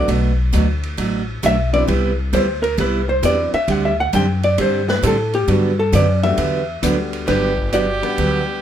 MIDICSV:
0, 0, Header, 1, 8, 480
1, 0, Start_track
1, 0, Key_signature, 1, "major"
1, 0, Tempo, 449775
1, 92, Time_signature, 4, 2, 24, 8
1, 9196, End_track
2, 0, Start_track
2, 0, Title_t, "Hollow-body jazz guitar"
2, 0, Program_c, 0, 26
2, 1558, Note_on_c, 0, 76, 112
2, 1849, Note_off_c, 0, 76, 0
2, 1853, Note_on_c, 0, 74, 106
2, 1946, Note_off_c, 0, 74, 0
2, 2504, Note_on_c, 0, 72, 85
2, 2797, Note_off_c, 0, 72, 0
2, 2802, Note_on_c, 0, 70, 90
2, 2956, Note_off_c, 0, 70, 0
2, 2992, Note_on_c, 0, 71, 96
2, 3291, Note_off_c, 0, 71, 0
2, 3299, Note_on_c, 0, 72, 94
2, 3445, Note_off_c, 0, 72, 0
2, 3472, Note_on_c, 0, 74, 109
2, 3771, Note_off_c, 0, 74, 0
2, 3781, Note_on_c, 0, 76, 120
2, 3947, Note_off_c, 0, 76, 0
2, 3947, Note_on_c, 0, 78, 93
2, 4091, Note_off_c, 0, 78, 0
2, 4111, Note_on_c, 0, 76, 83
2, 4253, Note_off_c, 0, 76, 0
2, 4272, Note_on_c, 0, 78, 101
2, 4413, Note_off_c, 0, 78, 0
2, 4430, Note_on_c, 0, 79, 89
2, 4730, Note_off_c, 0, 79, 0
2, 4741, Note_on_c, 0, 74, 96
2, 4886, Note_off_c, 0, 74, 0
2, 4923, Note_on_c, 0, 72, 92
2, 5217, Note_off_c, 0, 72, 0
2, 5227, Note_on_c, 0, 71, 96
2, 5370, Note_off_c, 0, 71, 0
2, 5410, Note_on_c, 0, 69, 98
2, 5701, Note_off_c, 0, 69, 0
2, 5706, Note_on_c, 0, 67, 104
2, 5879, Note_off_c, 0, 67, 0
2, 5879, Note_on_c, 0, 66, 86
2, 6176, Note_off_c, 0, 66, 0
2, 6184, Note_on_c, 0, 69, 96
2, 6329, Note_off_c, 0, 69, 0
2, 6352, Note_on_c, 0, 74, 84
2, 6649, Note_off_c, 0, 74, 0
2, 6653, Note_on_c, 0, 76, 96
2, 7247, Note_off_c, 0, 76, 0
2, 7766, Note_on_c, 0, 71, 79
2, 7771, Note_on_c, 0, 62, 61
2, 8218, Note_off_c, 0, 62, 0
2, 8258, Note_on_c, 0, 74, 85
2, 8264, Note_off_c, 0, 71, 0
2, 8264, Note_on_c, 0, 66, 61
2, 9178, Note_off_c, 0, 66, 0
2, 9196, Note_off_c, 0, 74, 0
2, 9196, End_track
3, 0, Start_track
3, 0, Title_t, "Fiddle"
3, 0, Program_c, 1, 110
3, 7755, Note_on_c, 1, 67, 68
3, 8209, Note_off_c, 1, 67, 0
3, 8233, Note_on_c, 1, 67, 71
3, 9163, Note_off_c, 1, 67, 0
3, 9196, End_track
4, 0, Start_track
4, 0, Title_t, "Upright piano"
4, 0, Program_c, 2, 0
4, 1846, Note_on_c, 2, 54, 85
4, 1847, Note_on_c, 2, 59, 75
4, 1849, Note_on_c, 2, 60, 75
4, 1852, Note_on_c, 2, 62, 72
4, 1856, Note_on_c, 2, 64, 86
4, 1989, Note_off_c, 2, 54, 0
4, 1989, Note_off_c, 2, 59, 0
4, 1990, Note_off_c, 2, 60, 0
4, 1991, Note_off_c, 2, 62, 0
4, 1994, Note_off_c, 2, 64, 0
4, 3441, Note_on_c, 2, 54, 56
4, 3443, Note_on_c, 2, 59, 56
4, 3443, Note_on_c, 2, 60, 51
4, 3446, Note_on_c, 2, 62, 54
4, 3450, Note_on_c, 2, 64, 66
4, 3733, Note_off_c, 2, 54, 0
4, 3734, Note_off_c, 2, 59, 0
4, 3734, Note_off_c, 2, 60, 0
4, 3735, Note_off_c, 2, 62, 0
4, 3737, Note_off_c, 2, 64, 0
4, 6649, Note_on_c, 2, 55, 70
4, 6650, Note_on_c, 2, 59, 66
4, 6651, Note_on_c, 2, 57, 70
4, 6653, Note_on_c, 2, 62, 72
4, 6656, Note_on_c, 2, 66, 88
4, 6791, Note_off_c, 2, 55, 0
4, 6791, Note_off_c, 2, 59, 0
4, 6792, Note_off_c, 2, 57, 0
4, 6793, Note_off_c, 2, 62, 0
4, 6794, Note_off_c, 2, 66, 0
4, 7280, Note_on_c, 2, 55, 60
4, 7280, Note_on_c, 2, 57, 59
4, 7283, Note_on_c, 2, 59, 56
4, 7286, Note_on_c, 2, 62, 57
4, 7292, Note_on_c, 2, 66, 79
4, 7765, Note_off_c, 2, 57, 0
4, 7766, Note_off_c, 2, 55, 0
4, 7767, Note_off_c, 2, 59, 0
4, 7768, Note_off_c, 2, 62, 0
4, 7771, Note_off_c, 2, 66, 0
4, 8564, Note_on_c, 2, 55, 67
4, 8565, Note_on_c, 2, 59, 62
4, 8568, Note_on_c, 2, 62, 64
4, 8572, Note_on_c, 2, 71, 78
4, 8572, Note_on_c, 2, 78, 69
4, 9177, Note_off_c, 2, 55, 0
4, 9178, Note_off_c, 2, 59, 0
4, 9179, Note_off_c, 2, 62, 0
4, 9181, Note_off_c, 2, 71, 0
4, 9181, Note_off_c, 2, 78, 0
4, 9196, End_track
5, 0, Start_track
5, 0, Title_t, "Steel-string acoustic guitar"
5, 0, Program_c, 3, 25
5, 84, Note_on_c, 3, 47, 59
5, 87, Note_on_c, 3, 54, 65
5, 88, Note_on_c, 3, 57, 67
5, 91, Note_on_c, 3, 62, 57
5, 93, Note_on_c, 3, 66, 61
5, 331, Note_off_c, 3, 47, 0
5, 332, Note_off_c, 3, 54, 0
5, 333, Note_off_c, 3, 57, 0
5, 334, Note_off_c, 3, 62, 0
5, 335, Note_off_c, 3, 66, 0
5, 561, Note_on_c, 3, 47, 71
5, 562, Note_on_c, 3, 54, 74
5, 564, Note_on_c, 3, 57, 80
5, 569, Note_on_c, 3, 62, 77
5, 571, Note_on_c, 3, 66, 72
5, 694, Note_off_c, 3, 47, 0
5, 694, Note_off_c, 3, 54, 0
5, 696, Note_off_c, 3, 57, 0
5, 698, Note_off_c, 3, 62, 0
5, 699, Note_off_c, 3, 66, 0
5, 1040, Note_on_c, 3, 47, 58
5, 1041, Note_on_c, 3, 54, 60
5, 1046, Note_on_c, 3, 57, 56
5, 1047, Note_on_c, 3, 62, 60
5, 1051, Note_on_c, 3, 66, 76
5, 1287, Note_off_c, 3, 47, 0
5, 1288, Note_off_c, 3, 54, 0
5, 1290, Note_off_c, 3, 57, 0
5, 1291, Note_off_c, 3, 62, 0
5, 1292, Note_off_c, 3, 66, 0
5, 1522, Note_on_c, 3, 47, 64
5, 1526, Note_on_c, 3, 54, 88
5, 1530, Note_on_c, 3, 57, 90
5, 1531, Note_on_c, 3, 66, 78
5, 1532, Note_on_c, 3, 62, 78
5, 1653, Note_off_c, 3, 47, 0
5, 1655, Note_off_c, 3, 54, 0
5, 1657, Note_off_c, 3, 57, 0
5, 1658, Note_off_c, 3, 62, 0
5, 1658, Note_off_c, 3, 66, 0
5, 2002, Note_on_c, 3, 48, 63
5, 2002, Note_on_c, 3, 55, 62
5, 2008, Note_on_c, 3, 64, 59
5, 2009, Note_on_c, 3, 59, 59
5, 2011, Note_on_c, 3, 67, 64
5, 2247, Note_off_c, 3, 48, 0
5, 2247, Note_off_c, 3, 55, 0
5, 2250, Note_off_c, 3, 59, 0
5, 2250, Note_off_c, 3, 64, 0
5, 2252, Note_off_c, 3, 67, 0
5, 2484, Note_on_c, 3, 48, 67
5, 2486, Note_on_c, 3, 55, 75
5, 2487, Note_on_c, 3, 59, 81
5, 2491, Note_on_c, 3, 64, 86
5, 2491, Note_on_c, 3, 67, 81
5, 2613, Note_off_c, 3, 48, 0
5, 2614, Note_off_c, 3, 55, 0
5, 2615, Note_off_c, 3, 59, 0
5, 2617, Note_off_c, 3, 64, 0
5, 2617, Note_off_c, 3, 67, 0
5, 2961, Note_on_c, 3, 48, 63
5, 2964, Note_on_c, 3, 55, 59
5, 2965, Note_on_c, 3, 59, 67
5, 2969, Note_on_c, 3, 64, 73
5, 2972, Note_on_c, 3, 67, 70
5, 3206, Note_off_c, 3, 48, 0
5, 3207, Note_off_c, 3, 55, 0
5, 3208, Note_off_c, 3, 59, 0
5, 3210, Note_off_c, 3, 64, 0
5, 3211, Note_off_c, 3, 67, 0
5, 3444, Note_on_c, 3, 48, 85
5, 3445, Note_on_c, 3, 55, 67
5, 3448, Note_on_c, 3, 59, 85
5, 3452, Note_on_c, 3, 64, 77
5, 3454, Note_on_c, 3, 67, 92
5, 3573, Note_off_c, 3, 48, 0
5, 3573, Note_off_c, 3, 55, 0
5, 3574, Note_off_c, 3, 59, 0
5, 3576, Note_off_c, 3, 64, 0
5, 3578, Note_off_c, 3, 67, 0
5, 3923, Note_on_c, 3, 50, 60
5, 3925, Note_on_c, 3, 55, 58
5, 3928, Note_on_c, 3, 60, 64
5, 3930, Note_on_c, 3, 62, 70
5, 3933, Note_on_c, 3, 67, 62
5, 4167, Note_off_c, 3, 50, 0
5, 4167, Note_off_c, 3, 55, 0
5, 4169, Note_off_c, 3, 60, 0
5, 4170, Note_off_c, 3, 62, 0
5, 4171, Note_off_c, 3, 67, 0
5, 4404, Note_on_c, 3, 50, 66
5, 4409, Note_on_c, 3, 55, 72
5, 4411, Note_on_c, 3, 60, 71
5, 4413, Note_on_c, 3, 67, 89
5, 4414, Note_on_c, 3, 62, 73
5, 4533, Note_off_c, 3, 50, 0
5, 4535, Note_off_c, 3, 55, 0
5, 4536, Note_off_c, 3, 60, 0
5, 4537, Note_off_c, 3, 67, 0
5, 4538, Note_off_c, 3, 62, 0
5, 4886, Note_on_c, 3, 50, 57
5, 4886, Note_on_c, 3, 55, 60
5, 4890, Note_on_c, 3, 60, 65
5, 4892, Note_on_c, 3, 62, 66
5, 4894, Note_on_c, 3, 67, 75
5, 5128, Note_off_c, 3, 50, 0
5, 5128, Note_off_c, 3, 55, 0
5, 5130, Note_off_c, 3, 60, 0
5, 5131, Note_off_c, 3, 62, 0
5, 5132, Note_off_c, 3, 67, 0
5, 5362, Note_on_c, 3, 50, 75
5, 5365, Note_on_c, 3, 55, 72
5, 5370, Note_on_c, 3, 60, 85
5, 5374, Note_on_c, 3, 62, 82
5, 5376, Note_on_c, 3, 67, 90
5, 5492, Note_off_c, 3, 50, 0
5, 5493, Note_off_c, 3, 55, 0
5, 5496, Note_off_c, 3, 60, 0
5, 5498, Note_off_c, 3, 62, 0
5, 5499, Note_off_c, 3, 67, 0
5, 5844, Note_on_c, 3, 50, 62
5, 5845, Note_on_c, 3, 54, 64
5, 5848, Note_on_c, 3, 59, 67
5, 5850, Note_on_c, 3, 62, 67
5, 5854, Note_on_c, 3, 67, 63
5, 6088, Note_off_c, 3, 50, 0
5, 6089, Note_off_c, 3, 54, 0
5, 6090, Note_off_c, 3, 59, 0
5, 6091, Note_off_c, 3, 62, 0
5, 6093, Note_off_c, 3, 67, 0
5, 6322, Note_on_c, 3, 50, 74
5, 6324, Note_on_c, 3, 54, 80
5, 6327, Note_on_c, 3, 59, 72
5, 6332, Note_on_c, 3, 62, 74
5, 6332, Note_on_c, 3, 67, 85
5, 6453, Note_off_c, 3, 50, 0
5, 6454, Note_off_c, 3, 54, 0
5, 6455, Note_off_c, 3, 59, 0
5, 6458, Note_off_c, 3, 62, 0
5, 6458, Note_off_c, 3, 67, 0
5, 6802, Note_on_c, 3, 50, 60
5, 6803, Note_on_c, 3, 54, 59
5, 6808, Note_on_c, 3, 59, 61
5, 6809, Note_on_c, 3, 62, 71
5, 6812, Note_on_c, 3, 67, 74
5, 7049, Note_off_c, 3, 50, 0
5, 7049, Note_off_c, 3, 54, 0
5, 7051, Note_off_c, 3, 59, 0
5, 7052, Note_off_c, 3, 62, 0
5, 7053, Note_off_c, 3, 67, 0
5, 7287, Note_on_c, 3, 50, 75
5, 7292, Note_on_c, 3, 54, 85
5, 7292, Note_on_c, 3, 59, 79
5, 7295, Note_on_c, 3, 62, 88
5, 7297, Note_on_c, 3, 67, 85
5, 7417, Note_off_c, 3, 50, 0
5, 7419, Note_off_c, 3, 54, 0
5, 7419, Note_off_c, 3, 59, 0
5, 7420, Note_off_c, 3, 62, 0
5, 7422, Note_off_c, 3, 67, 0
5, 7760, Note_on_c, 3, 50, 57
5, 7767, Note_on_c, 3, 54, 60
5, 7768, Note_on_c, 3, 59, 54
5, 7768, Note_on_c, 3, 62, 57
5, 7770, Note_on_c, 3, 67, 66
5, 8009, Note_off_c, 3, 50, 0
5, 8012, Note_off_c, 3, 54, 0
5, 8013, Note_off_c, 3, 59, 0
5, 8013, Note_off_c, 3, 62, 0
5, 8014, Note_off_c, 3, 67, 0
5, 8247, Note_on_c, 3, 54, 62
5, 8248, Note_on_c, 3, 50, 67
5, 8251, Note_on_c, 3, 59, 72
5, 8251, Note_on_c, 3, 62, 73
5, 8257, Note_on_c, 3, 67, 75
5, 8378, Note_off_c, 3, 54, 0
5, 8379, Note_off_c, 3, 50, 0
5, 8380, Note_off_c, 3, 59, 0
5, 8380, Note_off_c, 3, 62, 0
5, 8383, Note_off_c, 3, 67, 0
5, 8731, Note_on_c, 3, 50, 61
5, 8731, Note_on_c, 3, 54, 62
5, 8734, Note_on_c, 3, 59, 67
5, 8736, Note_on_c, 3, 62, 67
5, 8739, Note_on_c, 3, 67, 62
5, 8976, Note_off_c, 3, 50, 0
5, 8976, Note_off_c, 3, 54, 0
5, 8978, Note_off_c, 3, 59, 0
5, 8979, Note_off_c, 3, 62, 0
5, 8980, Note_off_c, 3, 67, 0
5, 9196, End_track
6, 0, Start_track
6, 0, Title_t, "Upright bass"
6, 0, Program_c, 4, 32
6, 85, Note_on_c, 4, 35, 93
6, 552, Note_off_c, 4, 35, 0
6, 568, Note_on_c, 4, 38, 97
6, 1033, Note_off_c, 4, 38, 0
6, 1043, Note_on_c, 4, 33, 75
6, 1510, Note_off_c, 4, 33, 0
6, 1526, Note_on_c, 4, 35, 88
6, 1991, Note_off_c, 4, 35, 0
6, 2009, Note_on_c, 4, 36, 90
6, 2472, Note_off_c, 4, 36, 0
6, 2484, Note_on_c, 4, 38, 96
6, 2949, Note_off_c, 4, 38, 0
6, 2966, Note_on_c, 4, 36, 85
6, 3430, Note_off_c, 4, 36, 0
6, 3444, Note_on_c, 4, 40, 88
6, 3744, Note_off_c, 4, 40, 0
6, 3925, Note_on_c, 4, 38, 93
6, 4390, Note_off_c, 4, 38, 0
6, 4411, Note_on_c, 4, 42, 103
6, 4873, Note_off_c, 4, 42, 0
6, 4892, Note_on_c, 4, 43, 88
6, 5354, Note_off_c, 4, 43, 0
6, 5369, Note_on_c, 4, 45, 94
6, 5833, Note_off_c, 4, 45, 0
6, 5846, Note_on_c, 4, 43, 95
6, 6312, Note_off_c, 4, 43, 0
6, 6323, Note_on_c, 4, 42, 96
6, 6791, Note_off_c, 4, 42, 0
6, 6804, Note_on_c, 4, 40, 76
6, 7272, Note_off_c, 4, 40, 0
6, 7286, Note_on_c, 4, 38, 90
6, 7754, Note_off_c, 4, 38, 0
6, 7770, Note_on_c, 4, 31, 93
6, 8541, Note_off_c, 4, 31, 0
6, 8729, Note_on_c, 4, 38, 80
6, 9196, Note_off_c, 4, 38, 0
6, 9196, End_track
7, 0, Start_track
7, 0, Title_t, "Muted upright bass strokes"
7, 3770, Note_on_c, 9, 29, 39
7, 3876, Note_off_c, 9, 29, 0
7, 9196, End_track
8, 0, Start_track
8, 0, Title_t, "Drums"
8, 91, Note_on_c, 9, 51, 66
8, 198, Note_off_c, 9, 51, 0
8, 569, Note_on_c, 9, 44, 53
8, 569, Note_on_c, 9, 51, 68
8, 675, Note_off_c, 9, 44, 0
8, 675, Note_off_c, 9, 51, 0
8, 890, Note_on_c, 9, 51, 51
8, 996, Note_off_c, 9, 51, 0
8, 1046, Note_on_c, 9, 51, 73
8, 1152, Note_off_c, 9, 51, 0
8, 1526, Note_on_c, 9, 44, 54
8, 1526, Note_on_c, 9, 51, 67
8, 1633, Note_off_c, 9, 44, 0
8, 1633, Note_off_c, 9, 51, 0
8, 1851, Note_on_c, 9, 51, 52
8, 1958, Note_off_c, 9, 51, 0
8, 2009, Note_on_c, 9, 51, 67
8, 2116, Note_off_c, 9, 51, 0
8, 2490, Note_on_c, 9, 44, 48
8, 2490, Note_on_c, 9, 51, 67
8, 2596, Note_off_c, 9, 44, 0
8, 2596, Note_off_c, 9, 51, 0
8, 2814, Note_on_c, 9, 51, 57
8, 2920, Note_off_c, 9, 51, 0
8, 2969, Note_on_c, 9, 51, 64
8, 3076, Note_off_c, 9, 51, 0
8, 3448, Note_on_c, 9, 44, 65
8, 3448, Note_on_c, 9, 51, 74
8, 3554, Note_off_c, 9, 44, 0
8, 3554, Note_off_c, 9, 51, 0
8, 3773, Note_on_c, 9, 51, 46
8, 3880, Note_off_c, 9, 51, 0
8, 3928, Note_on_c, 9, 51, 66
8, 4035, Note_off_c, 9, 51, 0
8, 4406, Note_on_c, 9, 44, 56
8, 4406, Note_on_c, 9, 51, 64
8, 4513, Note_off_c, 9, 44, 0
8, 4513, Note_off_c, 9, 51, 0
8, 4731, Note_on_c, 9, 51, 52
8, 4838, Note_off_c, 9, 51, 0
8, 4888, Note_on_c, 9, 51, 77
8, 4995, Note_off_c, 9, 51, 0
8, 5211, Note_on_c, 9, 38, 73
8, 5317, Note_off_c, 9, 38, 0
8, 5371, Note_on_c, 9, 44, 60
8, 5371, Note_on_c, 9, 51, 79
8, 5478, Note_off_c, 9, 44, 0
8, 5478, Note_off_c, 9, 51, 0
8, 5693, Note_on_c, 9, 51, 48
8, 5800, Note_off_c, 9, 51, 0
8, 5850, Note_on_c, 9, 51, 62
8, 5956, Note_off_c, 9, 51, 0
8, 6329, Note_on_c, 9, 44, 54
8, 6329, Note_on_c, 9, 51, 75
8, 6436, Note_off_c, 9, 44, 0
8, 6436, Note_off_c, 9, 51, 0
8, 6651, Note_on_c, 9, 51, 56
8, 6758, Note_off_c, 9, 51, 0
8, 6803, Note_on_c, 9, 51, 73
8, 6910, Note_off_c, 9, 51, 0
8, 7286, Note_on_c, 9, 44, 72
8, 7286, Note_on_c, 9, 51, 75
8, 7392, Note_off_c, 9, 44, 0
8, 7392, Note_off_c, 9, 51, 0
8, 7609, Note_on_c, 9, 51, 52
8, 7715, Note_off_c, 9, 51, 0
8, 7766, Note_on_c, 9, 38, 36
8, 7766, Note_on_c, 9, 51, 61
8, 7872, Note_off_c, 9, 38, 0
8, 7872, Note_off_c, 9, 51, 0
8, 8089, Note_on_c, 9, 36, 63
8, 8196, Note_off_c, 9, 36, 0
8, 8244, Note_on_c, 9, 44, 49
8, 8244, Note_on_c, 9, 51, 58
8, 8350, Note_off_c, 9, 44, 0
8, 8350, Note_off_c, 9, 51, 0
8, 8570, Note_on_c, 9, 51, 51
8, 8677, Note_off_c, 9, 51, 0
8, 8729, Note_on_c, 9, 51, 65
8, 8835, Note_off_c, 9, 51, 0
8, 9196, End_track
0, 0, End_of_file